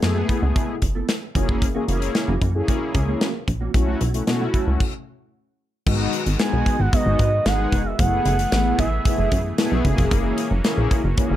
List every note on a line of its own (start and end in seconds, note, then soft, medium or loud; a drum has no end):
0.02 0.24 F#2 loud
0.02 0.75 A3 medium
0.02 0.75 B3 medium
0.02 0.75 E4 medium
0.02 0.75 G#4 loud
0.02 muted clean electric guitar stroke soft
0.02 snare loud
0.02 closed hi-hat medium
0.15 0.28 A3 medium
0.15 0.28 B3 medium
0.15 0.28 E4 medium
0.15 0.29 G#4 medium
0.29 0.39 A3 medium
0.29 0.39 B3 medium
0.29 0.40 E4 medium
0.29 0.40 G#4 medium
0.29 kick medium
0.29 closed hi-hat medium
0.42 0.53 C#2 loud
0.42 muted clean electric guitar stroke soft
0.55 0.69 A3 medium
0.55 0.68 B3 medium
0.55 0.68 E4 medium
0.55 0.67 G#4 medium
0.55 kick loud
0.55 closed hi-hat medium
0.69 muted clean electric guitar stroke soft
0.82 1.03 F#1 medium
0.82 muted clean electric guitar stroke soft
0.82 kick medium
0.82 closed hi-hat medium
0.95 1.06 A3 medium
0.95 1.06 B3 medium
0.95 1.06 E4 medium
0.95 1.05 A4 medium
1.08 muted clean electric guitar stroke soft
1.08 snare loud
1.08 closed hi-hat medium
1.22 muted clean electric guitar stroke soft
1.35 1.78 F#1 medium
1.35 1.48 E3 medium
1.35 1.67 A#3 medium
1.35 1.48 A#3 medium
1.35 1.67 C#4 medium
1.35 1.47 C#4 medium
1.35 1.67 E4 medium
1.35 1.47 F#4 medium
1.35 1.67 G#4 loud
1.35 kick medium
1.35 closed hi-hat medium
1.48 1.59 E3 soft
1.48 1.59 A#3 medium
1.48 1.59 C#4 soft
1.48 1.59 F#4 medium
1.48 kick loud
1.61 muted clean electric guitar stroke soft
1.61 kick loud
1.61 closed hi-hat medium
1.75 1.87 E3 medium
1.75 1.84 A#3 loud
1.75 1.87 A#3 medium
1.75 1.84 C#4 medium
1.75 1.88 C#4 medium
1.75 1.84 E4 medium
1.75 1.88 F#4 medium
1.75 1.84 G#4 loud
1.88 2.10 F#1 medium
1.88 1.98 E3 medium
1.88 2.34 A#3 loud
1.88 1.99 A#3 medium
1.88 2.34 C#4 medium
1.88 1.99 C#4 medium
1.88 2.34 E4 medium
1.88 1.99 F#4 medium
1.88 2.34 G#4 loud
1.88 closed hi-hat medium
2.01 muted clean electric guitar stroke medium
2.01 closed hi-hat medium
2.15 muted clean electric guitar stroke soft
2.15 snare medium
2.15 closed hi-hat medium
2.28 2.39 F#1 loud
2.28 2.40 E3 medium
2.28 2.40 A#3 medium
2.28 2.41 C#4 medium
2.28 2.41 F#4 medium
2.41 2.63 F#2 loud
2.41 2.52 E3 medium
2.41 2.52 A#3 medium
2.41 2.52 C#4 medium
2.41 2.52 F#4 medium
2.41 kick medium
2.41 closed hi-hat medium
2.54 2.61 A3 medium
2.54 3.27 C#4 medium
2.54 3.28 E4 medium
2.54 3.28 G#4 loud
2.54 muted clean electric guitar stroke soft
2.61 3.30 A#3 medium
2.68 2.81 E3 medium
2.68 2.81 A#3 medium
2.68 2.80 C#4 medium
2.68 2.80 F#4 medium
2.68 kick medium
2.68 closed hi-hat medium
2.81 muted clean electric guitar stroke soft
2.94 3.16 C#2 loud
2.94 muted clean electric guitar stroke soft
2.94 kick medium
2.94 closed hi-hat medium
3.08 3.18 E3 medium
3.08 3.18 A#3 medium
3.08 3.18 C#4 medium
3.08 3.18 G#4 medium
3.21 3.34 E3 medium
3.21 3.34 A#3 medium
3.21 3.33 C#4 loud
3.21 3.33 F#4 medium
3.21 snare loud
3.21 closed hi-hat medium
3.34 muted clean electric guitar stroke soft
3.48 3.69 A#1 medium
3.48 muted clean electric guitar stroke soft
3.48 kick medium
3.48 closed hi-hat medium
3.61 3.72 E3 soft
3.61 3.71 A#3 soft
3.61 3.71 C#4 medium
3.61 3.71 F#4 medium
3.74 3.96 B1 loud
3.74 4.01 A3 medium
3.74 4.01 C#4 medium
3.74 4.02 E4 medium
3.74 4.02 F#4 loud
3.74 kick loud
3.74 closed hi-hat medium
3.87 3.99 F#3 medium
3.87 4.00 A3 medium
3.87 4.00 E4 medium
3.87 4.00 F#4 medium
4.01 4.22 B1 loud
4.01 4.11 F#3 medium
4.01 4.11 A3 medium
4.01 4.11 E4 medium
4.01 4.11 F#4 medium
4.01 closed hi-hat medium
4.14 4.23 A3 medium
4.14 4.23 C#4 medium
4.14 4.23 E4 medium
4.14 4.23 F#4 medium
4.14 muted clean electric guitar stroke soft
4.14 closed hi-hat medium
4.27 4.49 B2 loud
4.27 4.80 A3 medium
4.27 4.80 C#4 medium
4.27 4.80 E4 medium
4.27 4.81 F#4 loud
4.27 snare loud
4.27 closed hi-hat medium
4.40 4.52 F#3 medium
4.40 4.53 A3 medium
4.40 4.53 E4 medium
4.40 4.54 F#4 medium
4.54 4.64 F#3 medium
4.54 4.64 A3 medium
4.54 4.64 E4 medium
4.54 4.65 F#4 medium
4.54 kick medium
4.54 closed hi-hat medium
4.67 4.78 C#2 medium
4.67 muted clean electric guitar stroke soft
4.80 kick loud
4.80 crash medium
5.86 6.08 G#1 loud
5.86 7.97 D#3 medium
5.86 6.23 G#3 medium
5.86 7.97 G#3 medium
5.86 7.97 B3 medium
5.86 6.23 B3 medium
5.86 6.23 D#4 medium
5.86 7.97 F#4 medium
5.86 6.23 F#4 medium
5.86 kick loud
5.86 crash loud
6.13 closed hi-hat medium
6.26 6.37 G#1 loud
6.26 closed hi-hat medium
6.39 6.76 G#3 medium
6.39 6.76 B3 medium
6.39 6.76 D#4 medium
6.39 6.76 G#4 medium
6.39 6.82 G#5 medium
6.39 snare loud
6.39 closed hi-hat medium
6.53 6.64 B1 medium
6.66 kick medium
6.66 closed hi-hat medium
6.80 6.90 G#1 medium
6.80 6.93 F#5 loud
6.92 7.29 G#3 medium
6.92 7.29 B3 medium
6.92 7.29 D#4 medium
6.92 7.29 F#4 medium
6.92 7.48 D#5 loud
6.92 kick loud
6.92 closed hi-hat medium
7.06 7.17 G#1 medium
7.19 7.41 G#2 medium
7.19 kick medium
7.19 closed hi-hat medium
7.46 7.67 G#1 loud
7.46 7.82 G#3 loud
7.46 7.82 B3 medium
7.46 7.82 D#4 medium
7.46 7.82 G#4 loud
7.46 7.87 F#5 loud
7.46 snare loud
7.46 closed hi-hat medium
7.72 7.94 F1 medium
7.72 kick medium
7.72 closed hi-hat medium
7.86 8.01 E5 medium
7.99 8.20 F#1 loud
7.99 11.37 E3 medium
7.99 8.35 A3 medium
7.99 9.83 A3 medium
7.99 8.35 B3 medium
7.99 9.83 B3 medium
7.99 8.36 E4 medium
7.99 9.83 G#4 medium
7.99 8.36 G#4 medium
7.99 8.78 F#5 loud
7.99 kick loud
7.99 closed hi-hat loud
8.26 8.47 F#1 loud
8.26 closed hi-hat medium
8.39 closed hi-hat medium
8.52 8.73 A1 loud
8.52 8.88 A3 medium
8.52 8.88 B3 medium
8.52 8.88 E4 medium
8.52 8.89 G#4 medium
8.52 snare loud
8.52 closed hi-hat medium
8.79 9.00 A1 loud
8.79 9.54 E5 medium
8.79 kick medium
8.79 closed hi-hat medium
9.05 9.41 A3 medium
9.05 9.41 B3 medium
9.05 9.42 E4 medium
9.05 9.42 G#4 medium
9.05 kick loud
9.05 closed hi-hat medium
9.18 9.29 F#1 loud
9.32 9.53 F#2 medium
9.32 kick medium
9.32 closed hi-hat medium
9.58 9.83 A3 loud
9.58 9.85 B3 loud
9.58 9.84 E4 loud
9.58 9.84 G#4 loud
9.58 snare loud
9.58 closed hi-hat medium
9.72 9.82 B1 loud
9.84 9.95 F#1 loud
9.84 9.91 A3 medium
9.84 11.37 A#3 medium
9.84 10.48 C#4 medium
9.84 11.37 C#4 medium
9.84 10.49 E4 medium
9.84 11.37 F#4 medium
9.84 10.49 G#4 loud
9.84 kick medium
9.84 closed hi-hat medium
9.91 10.51 A#3 medium
9.98 10.09 F1 medium
9.98 kick loud
9.98 closed hi-hat medium
10.11 10.33 F#1 loud
10.11 kick loud
10.11 closed hi-hat loud
10.38 closed hi-hat medium
10.51 10.62 F#1 loud
10.64 11.00 A#3 loud
10.64 11.01 C#4 medium
10.64 11.01 E4 medium
10.64 11.01 G#4 loud
10.64 snare loud
10.64 closed hi-hat medium
10.78 10.88 A#1 loud
10.91 kick medium
10.91 closed hi-hat medium
11.04 11.15 F#1 loud
11.17 11.37 A#3 medium
11.17 11.37 C#4 medium
11.17 11.37 E4 medium
11.17 11.37 G#4 medium
11.17 kick loud
11.17 closed hi-hat medium
11.31 11.37 F#1 loud